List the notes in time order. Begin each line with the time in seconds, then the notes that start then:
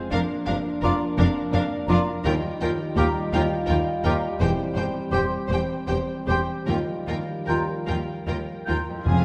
Already playing: F3 G#3 C4 F4 G#4 C5 F5 G#5
0.11 F1 F2 F3 A#3 D4 A#4 F5
0.31 A#3
0.46 F1 F2 D4 A#4 F5
0.67 F4
0.82 F1 F2 D4 F4 A#4 D5 F5 A#5
1.02 D5
1.17 F1 F2 D4 A#4 F5
1.37 A#5
1.52 F1 F2 D4 A#4 F5
1.72 D5
1.87 F1 F2 D4 F4 A#4 D5 F5 A#5
2.07 F4
2.24 D#2 D#3 G3 F4 A#4 G5
2.45 G3
2.61 D#2 D#4 F4 A#4 G5
2.80 F4
2.97 D#2 F4 G4 A#4 F5 G5 A#5
3.14 D#5
3.32 D#2 F4 A#4 F5 G5
3.49 G5
3.66 D#2 F4 A#4 F5 G5
3.85 D#5
4.03 D#2 F4 G4 A#4 F5 G5 A#5
4.21 F4
4.39 E1 E2 E3 C4 G4 C5 G5
4.57 G3
4.74 E1 E2 C4 G4 C5 G5
4.93 G4
5.11 E1 E2 C4 G4 C5 G5 C6
5.29 C5
5.47 E1 E2 G4 C5 G5
5.53 G5
5.68 C5
5.87 E1 E2 G4 C5 G5
6.08 C5
6.26 E1 E2 G4 C5 G5 C6
6.48 C4
6.66 D#2 D#3 G3 F4 A#4 G5
6.88 F3
7.07 D#2 A#3 F4 A#4 G5
7.28 G4
7.46 D#2 F4 A#4 G5 A#5
7.68 A#4
7.87 D#2 F4 A#4 G5
8.07 F5
8.26 D#2 F4 A#4 G5
8.46 A#4
8.65 D#2 F4 A#4 G5 A#5
8.88 F2 G4
8.94 F3
8.98 F4
9.03 F2 G#3 C4 F4 G#4 F5 G#5
9.07 F1 G#5